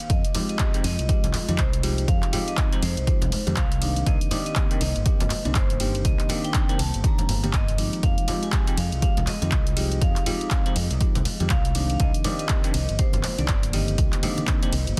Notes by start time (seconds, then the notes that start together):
Already playing: F5
0.10 F2 G#3 F4 D#5, kick, closed hi-hat
0.25 closed hi-hat
0.35 F3 G#3 C4 D#4 G4, open hi-hat, ride, low conga
0.49 D#5, closed hi-hat
0.59 kick, clap, closed hi-hat
0.74 F3 G#3 C4 D#4 G4, closed hi-hat
0.84 F2 D#5, open hi-hat, ride
0.99 C2, closed hi-hat
1.09 F3 G#3 C4 D#4 G4, kick, closed hi-hat
1.24 C2, closed hi-hat, low conga
1.33 clap, open hi-hat, ride, low conga
1.48 F2 F3 G#3 C4 D#4 G4, closed hi-hat, high conga
1.58 C2 C5, kick, clap, closed hi-hat
1.73 closed hi-hat
1.83 F3 G#3 C4 D#4 G4, open hi-hat, ride
1.98 closed hi-hat
2.08 F2 D#4 F5, kick, closed hi-hat
2.22 clap, closed hi-hat
2.33 F3 G#3 C4 D#4 G4, open hi-hat, ride, low conga
2.48 D#5, closed hi-hat
2.57 kick, clap, closed hi-hat
2.72 F3 G#3 C4 D#4 G4, closed hi-hat
2.83 F2 C5, open hi-hat, ride
2.97 C2, closed hi-hat
3.07 F3 G#3 C4 D#4 G4 C5, kick, closed hi-hat
3.22 C2, closed hi-hat, low conga
3.32 open hi-hat, ride, low conga
3.47 F2 F3 G#3 C4 D#4 G4, closed hi-hat, high conga
3.56 C2 F5, kick, clap, closed hi-hat
3.72 closed hi-hat
3.82 D#3 A#3 C4 D4 G4, open hi-hat, ride
3.96 closed hi-hat
4.07 C2 D#3 A#3 C5 D#5, kick, closed hi-hat
4.21 closed hi-hat
4.31 D#3 A#3 C4 D4 G4, open hi-hat, ride, low conga
4.46 D#5, closed hi-hat
4.55 kick, clap, closed hi-hat
4.71 D#3 A#3 C4 D4 G4, closed hi-hat
4.81 C2 D#5, open hi-hat, ride
4.96 G1, closed hi-hat
5.06 D#3 A#3 C4 D4 G4, kick, closed hi-hat
5.20 G1, closed hi-hat, low conga
5.30 clap, open hi-hat, ride, low conga
5.45 C2 D#3 A#3 C4 D4 G4, closed hi-hat, high conga
5.55 C5, kick, clap, closed hi-hat
5.70 closed hi-hat
5.80 D#3 A#3 C4 D4 G4, open hi-hat, ride
5.95 closed hi-hat
6.05 C2 D#5, kick, closed hi-hat
6.19 clap, closed hi-hat
6.29 D#3 A#3 C4 D4 G4, open hi-hat, ride, low conga
6.44 G5, closed hi-hat
6.54 kick, clap, closed hi-hat
6.69 D#3 A#3 C4 D4 G4, closed hi-hat
6.79 C2 A5, open hi-hat, ride
6.94 G1, closed hi-hat
7.04 D#3 A#3 C4 D4 G4 A#5, kick, closed hi-hat
7.18 closed hi-hat, low conga
7.29 G1, open hi-hat, ride, low conga
7.43 D#3 A#3 C4 D4 G4, closed hi-hat, high conga
7.53 D#5, kick, clap, closed hi-hat
7.68 closed hi-hat
7.78 F3 G#3 C4 D#4 G4, open hi-hat, ride
7.93 closed hi-hat
8.03 F2 G#3 F4 D#5 F5, kick, closed hi-hat
8.18 closed hi-hat
8.28 F3 G#3 C4 D#4 G4, open hi-hat, ride, low conga
8.43 G#5, closed hi-hat
8.52 kick, clap, closed hi-hat
8.67 F3 G#3 C4 D#4 G4, closed hi-hat
8.77 F2 F5, open hi-hat, ride
8.92 C2, closed hi-hat
9.02 F3 G#3 C4 D#4 G4 F5, kick, closed hi-hat
9.17 C2, closed hi-hat, low conga
9.27 D#5, clap, open hi-hat, ride, low conga
9.42 F2 F3 G#3 C4 D#4 G4, closed hi-hat, high conga
9.51 C2, kick, clap, closed hi-hat
9.67 closed hi-hat
9.77 F3 G#3 C4 D#4 G4, open hi-hat, ride
9.92 closed hi-hat
10.01 F2 F3 F5, kick, closed hi-hat
10.16 clap, closed hi-hat
10.26 F3 G#3 C4 D#4 G4, open hi-hat, ride, low conga
10.41 closed hi-hat
10.50 kick, clap, closed hi-hat
10.66 F3 G#3 C4 D#4 G4, closed hi-hat
10.76 F2, open hi-hat, ride
10.91 C2, closed hi-hat
11.01 F3 G#3 C4 D#4 G4, kick, closed hi-hat
11.15 C2, closed hi-hat, low conga
11.25 open hi-hat, ride, low conga
11.40 F2 F3 G#3 C4 D#4 G4, closed hi-hat, high conga
11.50 C2 F5, kick, clap, closed hi-hat
11.65 closed hi-hat
11.75 D#3 A#3 C4 D4 G4, open hi-hat, ride
11.90 closed hi-hat
11.94 F5
12.00 C2 A#3 C5 D#5, kick, closed hi-hat
12.14 closed hi-hat
12.24 D#3 A#3 C4 D4 G4, open hi-hat, ride, low conga
12.39 D#5, closed hi-hat
12.49 kick, clap, closed hi-hat
12.64 D#3 A#3 C4 D4 G4, closed hi-hat
12.74 C2 D#5, open hi-hat, ride
12.89 G1, closed hi-hat
12.99 D#3 A#3 C4 D4 G4 C5, kick, closed hi-hat
13.13 G1, closed hi-hat, low conga
13.23 clap, open hi-hat, ride, low conga
13.38 C2 D#3 A#3 C4 D4 G4 D5, closed hi-hat, high conga
13.48 G1, kick, clap, closed hi-hat
13.63 closed hi-hat
13.73 D3 D#3 A#3 C4 G4 D#5, open hi-hat, ride
13.88 closed hi-hat
13.98 C2, kick, closed hi-hat
14.12 clap, closed hi-hat
14.23 D3 D#3 A#3 C4 G4, open hi-hat, ride, low conga
14.38 closed hi-hat, high conga
14.47 kick, clap, closed hi-hat
14.63 D#3 A#3 C4 D4 G4, closed hi-hat
14.73 C2, open hi-hat, ride
14.87 G1, closed hi-hat